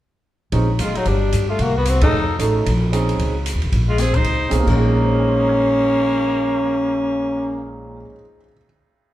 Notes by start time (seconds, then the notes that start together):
0.52 A#1 G#3 C4 C#4 D#4, kick, ride
0.79 F#1 G#3 F4, hi-hat pedal, ride
0.95 F#3 D#4, ride
1.05 G1 G3 D4, kick, ride
1.32 G2, hi-hat pedal, ride
1.49 A3 F4
1.59 C2 F#4, kick, ride
1.63 A#3
1.76 B3 F#4
1.85 C4 F#4, hi-hat pedal, ride
2.01 F#2 A3 C#4 D#4 G#4 A4, kick, ride
2.13 F2
2.39 A1 A3 C#4 D#4 A4, hi-hat pedal, ride
2.66 A#1, kick, ride
2.92 C4 C#4 D#4 G#4, hi-hat pedal, ride
3.09 ride
3.19 C#2, kick, ride
3.46 hi-hat pedal, ride
3.54 D#2
3.62 B1, ride
3.72 A#1, kick, ride
3.88 G#3 F4
3.98 C4 G#4, snare, hi-hat pedal, ride
4.14 D#4 C5, kick, ride
4.24 C#2, kick, ride
4.49 B1 C4 C#4 D#4 G#4, hi-hat pedal, ride
4.55 A#2
4.59 A#3
4.64 A#1 G#3 A#3, kick, crash
4.69 C#4
4.75 D#4
4.79 G#4
5.04 C5
5.11 D#5
5.20 G#5
5.28 C6
5.39 D#6
5.49 G#6
5.61 C7